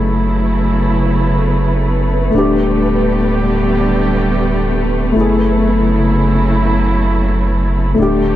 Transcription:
Already playing: analog synth bass F#1, string section C#3 F#3 A3 E4, upright piano A3 E4 G#4, synth texture B3 B4
2.30 analog synth bass D1, string section D3 G3 G4, upright piano A3 D4
2.38 upright piano G4
5.12 analog synth bass F#1, string section C#3 F#3 E4, upright piano A3
5.16 upright piano E4 G#4
7.94 analog synth bass D1, string section D3 G3 A3 G4, upright piano A3 D4
8.02 upright piano G4

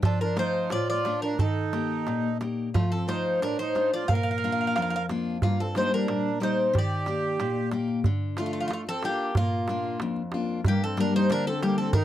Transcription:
0.03 steel-string acoustic guitar F3, accordion D4, bouzouki A4, darbuka dum
0.21 accordion D4, bouzouki A#4
0.36 steel-string acoustic guitar A3 F4 D5, accordion D#4, bouzouki C5, darbuka tek
0.54 darbuka tek
0.70 steel-string acoustic guitar A2, accordion F4, bouzouki D5, darbuka tek
0.89 accordion F4, bouzouki D5
1.05 steel-string acoustic guitar A3 D4 F4, darbuka tek
1.22 accordion D4, bouzouki A#4
1.39 steel-string acoustic guitar D#3, accordion D#4, bouzouki A4, darbuka dum
1.56 darbuka tek
1.73 steel-string acoustic guitar A#3 D#4 G4, darbuka tek
1.90 darbuka tek
2.07 steel-string acoustic guitar A#2, darbuka tek
2.41 steel-string acoustic guitar A#3 D#4 G4, darbuka tek
2.74 steel-string acoustic guitar F3, accordion A3, bouzouki F4, darbuka dum
2.92 accordion C4, bouzouki A4
3.08 steel-string acoustic guitar A3 F4 D5, accordion D#4, bouzouki C5, darbuka tek
3.26 darbuka tek
3.42 steel-string acoustic guitar A2, accordion D4, bouzouki A#4, darbuka tek
3.59 accordion D#4, bouzouki C5
3.75 steel-string acoustic guitar A3 D4 F4, darbuka tek
3.94 accordion F4, bouzouki D5
4.08 steel-string acoustic guitar A#2, accordion A#4, bouzouki F5, darbuka dum
4.15 bouzouki F5
4.23 bouzouki F5
4.31 bouzouki F5
4.38 bouzouki F5
4.44 steel-string acoustic guitar A#3 D4 F4, bouzouki F5
4.52 bouzouki F5
4.59 bouzouki F5, darbuka tek
4.67 bouzouki F5
4.76 steel-string acoustic guitar F2, bouzouki F5, darbuka tek
4.82 bouzouki F5
4.90 bouzouki F5
4.96 bouzouki F5
5.09 steel-string acoustic guitar A#3 D4 F4, darbuka tek
5.42 steel-string acoustic guitar G2, accordion A#3, bouzouki F4, darbuka dum
5.60 accordion C4, bouzouki A4
5.75 steel-string acoustic guitar G3 A#3 D4, accordion D#4, bouzouki C5, darbuka tek
5.92 accordion D4, bouzouki A#4, darbuka tek
6.08 steel-string acoustic guitar A#2, darbuka tek
6.40 steel-string acoustic guitar G3 A#3 D5, accordion D#4, bouzouki C5, darbuka tek
6.73 steel-string acoustic guitar D#3, accordion G4, darbuka dum
6.78 bouzouki D5
6.91 darbuka tek
7.06 steel-string acoustic guitar A#3 D#4 G4, darbuka tek
7.23 darbuka tek
7.40 steel-string acoustic guitar A#2, darbuka tek
7.56 darbuka tek
7.72 steel-string acoustic guitar A#3 D#4 G4, darbuka tek
7.88 darbuka tek
8.04 steel-string acoustic guitar D3, darbuka dum
8.37 steel-string acoustic guitar A3 D4 F4, accordion A3, bouzouki F4, darbuka tek
8.46 bouzouki F4
8.53 bouzouki F4
8.60 bouzouki F4
8.68 bouzouki F4, darbuka tek
8.73 bouzouki F4
8.87 accordion C4, bouzouki A4, darbuka tek
9.03 accordion A#3, steel-string acoustic guitar D4 F4 A4, bouzouki G4, darbuka tek
9.35 steel-string acoustic guitar A#2, accordion A#3, bouzouki F4, darbuka dum
9.68 steel-string acoustic guitar A#3 D4 F4, darbuka tek
9.84 darbuka tek
10.00 steel-string acoustic guitar F2, darbuka tek
10.16 darbuka tek
10.32 steel-string acoustic guitar A#3 D4 F4, darbuka tek
10.65 steel-string acoustic guitar G2, accordion A#3, bouzouki G4, darbuka dum
10.84 accordion C4, bouzouki A4
10.97 steel-string acoustic guitar G3 A#3 D4, accordion D4, bouzouki A#4, darbuka tek
11.14 accordion D#4, bouzouki C5, darbuka tek
11.30 steel-string acoustic guitar D3, accordion D4, bouzouki A#4, darbuka tek
11.46 accordion C4, bouzouki A4, darbuka tek
11.63 steel-string acoustic guitar G3 A#3 D4, accordion A#3, bouzouki G4, darbuka tek
11.78 accordion C4, bouzouki A4
11.93 steel-string acoustic guitar D#3, accordion D#4, bouzouki A#4, darbuka dum

